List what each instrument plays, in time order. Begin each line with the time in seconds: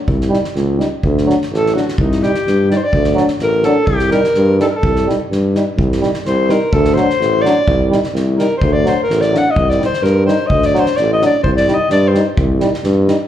0.07 tuba C2, kick
0.21 snare
0.29 euphonium G3 D#4
0.33 snare
0.44 snare
0.55 tuba C#2, snare
0.78 euphonium G3 D#4, snare
1.03 tuba D2, kick
1.17 snare
1.25 euphonium F#3 D4
1.29 snare
1.41 snare
1.52 tuba A1, alto saxophone A4, snare
1.66 snare
1.73 euphonium F#3 D4, alto saxophone F#4, snare
1.88 snare
1.98 tuba C2, alto saxophone D#4, kick
2.11 snare
2.22 euphonium G3 D#4, alto saxophone G4, snare
2.34 snare
2.47 tuba G2, snare
2.68 euphonium G3 D#4, alto saxophone D5, snare
2.77 alto saxophone C5
2.84 alto saxophone D5
2.93 tuba D2, kick
3.04 snare
3.14 euphonium F#3 D4, snare
3.28 snare
3.39 tuba A1, snare
3.43 alto saxophone A#4
3.63 euphonium F#3 D4, alto saxophone A4, snare
3.87 tuba C2, alto saxophone G4, kick
3.99 snare
4.11 euphonium G3 D#4, alto saxophone A#4, snare
4.24 snare
4.34 tuba G2, snare
4.59 euphonium G3 D#4, alto saxophone A4, snare
4.68 alto saxophone A#4
4.76 alto saxophone A4
4.83 tuba C2, kick
4.96 snare
5.07 euphonium G3 D#4, snare
5.31 tuba G2, snare
5.54 euphonium G3 D#4, snare
5.76 tuba C2, kick
5.92 snare
6.00 euphonium G3 D#4, snare
6.13 snare
6.25 tuba C2, alto saxophone C5, snare
6.48 euphonium G3 D#4, alto saxophone A#4, snare
6.73 tuba D2, alto saxophone A4, kick
6.84 snare
6.94 euphonium F#3, alto saxophone C5, snare
6.99 euphonium D4
7.09 snare
7.20 tuba A1, snare
7.42 euphonium F#3 D4, alto saxophone D5, snare
7.68 tuba C2, kick
7.90 euphonium G3 D#4, snare
8.03 snare
8.14 tuba C2, snare
8.35 euphonium G3 D#4, alto saxophone A#4, snare
8.58 alto saxophone C5, kick
8.62 tuba D2
8.73 alto saxophone D5
8.84 euphonium F#3 D4, snare
8.88 alto saxophone C5
9.03 alto saxophone A#4
9.10 tuba A1, snare
9.21 alto saxophone D5, snare
9.30 euphonium F#3 D4, snare
9.37 alto saxophone F#5
9.51 alto saxophone D#5
9.56 tuba C2, kick
9.70 alto saxophone D5, snare
9.78 euphonium G3 D#4, snare
9.86 alto saxophone C5
9.93 snare
10.03 tuba G2, alto saxophone A#4, snare
10.25 euphonium G3 D#4, alto saxophone C5, snare
10.47 tuba D2, alto saxophone D#5, kick
10.62 alto saxophone D5, snare
10.74 euphonium F#3 D4, snare
10.79 alto saxophone C5
10.86 snare
10.96 tuba A1, alto saxophone D5, snare
11.13 alto saxophone D#5
11.20 euphonium F#3 D4, snare
11.26 alto saxophone D5
11.44 tuba C2, alto saxophone C5, kick
11.57 alto saxophone D5, snare
11.67 euphonium G3 D#4, snare
11.74 alto saxophone D#5
11.90 tuba G2, alto saxophone D5, snare
12.08 alto saxophone C5
12.13 euphonium G3 D#4, snare
12.37 tuba C2, kick
12.60 euphonium G3 D#4, snare
12.74 snare
12.83 tuba G2, snare
13.07 euphonium G3 D#4, snare